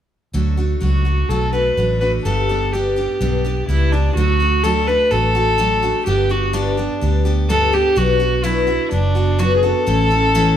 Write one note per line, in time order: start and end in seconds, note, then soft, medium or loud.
0.33 0.74 D2 medium
0.33 0.58 D3 medium
0.33 0.58 F#3 medium
0.33 0.58 A3 medium
0.33 0.57 D4 medium
0.33 0.56 F#4 medium
0.57 0.80 A3 soft
0.57 0.81 D4 medium
0.57 0.82 F#4 medium
0.80 1.22 C#2 medium
0.80 1.05 F#3 medium
0.80 1.05 A3 medium
0.80 1.05 D4 medium
0.80 1.30 F#4 medium
0.80 1.04 F#4 medium
1.05 1.29 A3 soft
1.05 1.30 D4 soft
1.05 1.29 F#4 soft
1.29 1.70 B1 medium
1.29 1.54 D3 medium
1.29 1.54 F#3 medium
1.29 1.54 A3 medium
1.29 1.53 D4 medium
1.29 1.52 F#4 medium
1.29 1.52 A4 medium
1.52 1.77 A3 soft
1.52 1.77 D4 soft
1.52 1.77 F#4 soft
1.52 1.97 B4 medium
1.77 2.18 A1 medium
1.77 2.01 F#3 soft
1.77 2.02 A3 medium
1.77 2.01 D4 medium
1.77 2.00 F#4 medium
2.00 2.25 A3 soft
2.00 2.25 D4 soft
2.00 2.25 F#4 soft
2.00 2.11 B4 medium
2.25 3.06 G1 medium
2.25 2.49 G2 medium
2.25 2.49 D3 medium
2.25 2.49 G3 medium
2.25 2.49 B3 medium
2.25 2.48 D4 medium
2.25 2.48 G4 medium
2.25 2.74 A4 medium
2.49 2.72 G3 soft
2.49 2.73 B3 soft
2.49 2.73 D4 soft
2.49 2.73 G4 soft
2.72 2.97 G3 medium
2.72 2.96 B3 medium
2.72 2.96 D4 medium
2.72 3.68 G4 medium
2.72 2.95 G4 medium
2.96 3.20 G3 soft
2.96 3.20 B3 soft
2.96 3.20 D4 soft
2.96 3.20 G4 soft
3.21 3.61 B1 medium
3.21 3.44 G2 medium
3.21 3.45 D3 medium
3.21 3.45 G3 medium
3.21 3.45 B3 medium
3.21 3.44 D4 medium
3.21 3.43 G4 medium
3.45 3.67 G3 soft
3.45 3.68 B3 medium
3.45 3.69 D4 medium
3.45 3.68 G4 medium
3.68 4.09 C#2 medium
3.68 3.92 G3 medium
3.68 3.92 B3 medium
3.68 3.92 D4 medium
3.68 3.94 E4 medium
3.68 3.91 G4 medium
3.92 4.17 G3 soft
3.92 4.17 B3 medium
3.92 4.15 D4 medium
3.92 4.16 D4 medium
3.92 4.16 G4 soft
4.16 4.97 D2 medium
4.16 4.40 D3 medium
4.16 4.40 F#3 medium
4.16 4.41 A3 medium
4.16 4.40 D4 medium
4.16 4.64 F#4 medium
4.16 4.39 F#4 medium
4.40 4.63 A3 soft
4.40 4.63 D4 soft
4.40 4.64 F#4 medium
4.63 4.87 D3 medium
4.63 4.88 F#3 medium
4.63 4.88 A3 medium
4.63 4.88 D4 medium
4.63 4.86 F#4 medium
4.63 4.89 A4 medium
4.87 5.10 A3 soft
4.87 5.11 D4 soft
4.87 5.11 F#4 soft
4.87 5.12 B4 loud
5.11 5.92 A1 medium
5.11 5.35 F#3 medium
5.11 5.35 A3 medium
5.11 5.35 D4 medium
5.11 5.34 F#4 medium
5.11 6.06 A4 loud
5.35 5.58 A3 soft
5.35 5.58 D4 medium
5.35 5.59 F#4 medium
5.58 5.82 D3 medium
5.58 5.83 F#3 medium
5.58 5.83 A3 medium
5.58 5.83 D4 medium
5.58 5.81 F#4 medium
5.83 6.07 A3 soft
5.83 6.06 D4 soft
5.83 6.06 F#4 medium
6.06 6.87 G1 medium
6.06 6.30 G2 medium
6.06 6.30 D3 medium
6.06 6.30 G3 medium
6.06 6.30 B3 medium
6.06 6.29 D4 medium
6.06 6.32 G4 medium
6.06 6.28 G4 medium
6.29 6.53 G3 soft
6.29 6.53 B3 soft
6.29 6.53 D4 soft
6.29 6.55 F#4 medium
6.29 6.53 G4 medium
6.53 6.78 G2 medium
6.53 6.77 D3 medium
6.53 6.78 G3 medium
6.53 6.78 B3 medium
6.53 7.25 D4 medium
6.53 6.77 D4 medium
6.53 6.76 G4 medium
6.77 7.00 G3 soft
6.77 7.01 B3 soft
6.77 7.02 D4 soft
6.77 7.01 G4 soft
7.01 7.83 D2 medium
7.01 7.25 G3 medium
7.01 7.25 B3 medium
7.01 7.25 D4 medium
7.01 7.24 G4 medium
7.25 7.48 G3 soft
7.25 7.49 B3 soft
7.25 7.49 D4 medium
7.25 7.49 G4 medium
7.49 7.73 G2 medium
7.49 7.73 D3 medium
7.49 7.73 G3 medium
7.49 7.73 B3 medium
7.49 7.72 D4 medium
7.49 7.71 G4 medium
7.49 7.75 A4 medium
7.73 7.96 G3 soft
7.73 7.95 B3 soft
7.73 7.96 D4 soft
7.73 7.97 G4 soft
7.73 7.99 G4 loud
7.96 8.77 B1 medium
7.96 8.20 B2 medium
7.96 8.21 F#3 medium
7.96 8.21 B3 medium
7.96 8.20 D4 medium
7.96 8.46 F#4 loud
7.96 8.18 F#4 medium
8.20 8.43 B3 soft
8.20 8.43 D4 medium
8.20 8.43 F#4 medium
8.44 8.68 B2 medium
8.44 8.68 F#3 medium
8.44 8.67 B3 medium
8.44 8.67 D4 medium
8.44 8.91 E4 medium
8.44 8.65 F#4 medium
8.67 8.90 B3 soft
8.67 8.91 D4 medium
8.67 8.91 F#4 medium
8.91 9.73 F#1 medium
8.91 9.15 F#3 medium
8.91 9.16 B3 medium
8.91 9.41 D4 medium
8.91 9.15 D4 medium
8.91 9.14 F#4 medium
9.15 9.38 B3 soft
9.15 9.39 D4 soft
9.15 9.38 F#4 medium
9.39 9.63 B2 medium
9.39 9.63 F#3 medium
9.39 9.63 B3 medium
9.39 9.63 D4 medium
9.39 9.62 F#4 medium
9.39 9.56 F#4 loud
9.57 9.66 G#4 medium
9.63 9.87 B3 soft
9.63 9.87 D4 soft
9.63 9.87 F#4 medium
9.63 10.57 A4 loud
9.87 10.57 A1 medium
9.87 10.11 A2 medium
9.87 10.11 E3 medium
9.87 10.11 A3 medium
9.87 10.11 C#4 medium
9.87 10.10 E4 medium
9.87 10.09 A4 medium
10.11 10.34 A3 soft
10.11 10.34 C#4 soft
10.11 10.34 E4 soft
10.11 10.34 A4 medium
10.35 10.57 A2 medium
10.35 10.57 E3 medium
10.35 10.57 A3 medium
10.35 10.57 C#4 loud
10.35 10.57 E4 loud
10.35 10.57 A4 medium